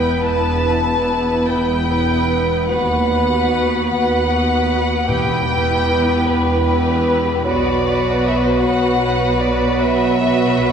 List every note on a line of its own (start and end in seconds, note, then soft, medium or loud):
0.00 0.12 E1 soft
0.00 0.13 E2 soft
0.00 0.66 B3 soft
0.00 1.46 B3 soft
0.00 0.65 E4 soft
0.00 0.65 B4 soft
0.00 1.46 B4 soft
0.00 0.26 G5 medium
0.26 1.35 E1 soft
0.26 1.36 E2 soft
0.26 1.47 A5 medium
0.67 1.88 B3 soft
0.67 1.88 E4 soft
0.67 1.87 B4 soft
1.49 2.56 E1 soft
1.49 2.56 E2 soft
1.49 2.68 B3 soft
1.49 2.68 B4 soft
1.49 2.71 G5 medium
1.91 2.68 B3 soft
1.91 2.69 E4 soft
1.91 2.69 B4 soft
2.69 3.76 D#2 soft
2.69 3.09 B3 soft
2.69 3.72 B3 soft
2.69 3.09 F#4 soft
2.69 3.87 B4 soft
2.69 3.10 B4 soft
2.69 3.87 F#5 medium
3.10 4.26 B3 soft
3.10 4.26 F#4 soft
3.10 4.27 B4 soft
3.89 4.94 D#2 soft
3.89 4.80 B3 soft
3.89 4.80 B4 soft
3.89 5.07 F#5 medium
4.28 5.07 B3 soft
4.28 5.07 F#4 soft
4.28 5.07 B4 soft
5.08 6.13 E1 medium
5.08 6.23 E2 soft
5.08 6.13 E2 soft
5.08 6.23 B3 soft
5.08 5.48 B3 soft
5.08 5.47 E4 soft
5.08 5.48 G4 soft
5.08 5.48 B4 soft
5.08 6.23 B4 soft
5.08 6.27 G5 medium
5.49 6.63 B3 soft
5.49 6.63 E4 soft
5.49 6.63 G4 soft
5.49 6.63 B4 soft
6.26 7.30 E1 soft
6.26 7.30 E2 soft
6.26 7.43 B3 soft
6.26 7.45 B4 medium
6.26 7.43 B4 soft
6.65 7.44 B3 soft
6.65 7.44 E4 soft
6.65 7.43 G4 soft
6.65 7.43 B4 soft
7.44 8.49 B1 medium
7.44 8.49 B2 medium
7.44 8.60 F#3 soft
7.44 7.85 B3 soft
7.44 7.84 F#4 soft
7.44 7.85 F#4 soft
7.44 8.60 B4 soft
7.44 7.83 B4 soft
7.44 8.29 D5 medium
7.85 9.00 B3 soft
7.85 9.00 F#4 soft
7.85 8.99 B4 soft
8.28 8.37 E5 medium
8.37 8.46 D5 medium
8.45 8.54 C5 medium
8.54 8.62 D5 medium
8.62 9.68 B1 medium
8.62 9.68 B2 medium
8.62 10.72 F#3 soft
8.62 10.72 B4 soft
8.62 9.40 F#5 medium
9.02 10.21 B3 soft
9.02 10.21 F#4 soft
9.02 10.20 B4 soft
9.40 9.82 D5 medium
9.82 10.72 B1 medium
9.82 10.72 B2 soft
9.82 10.72 E5 medium
10.23 10.72 B3 soft
10.23 10.72 F#4 soft
10.23 10.72 B4 soft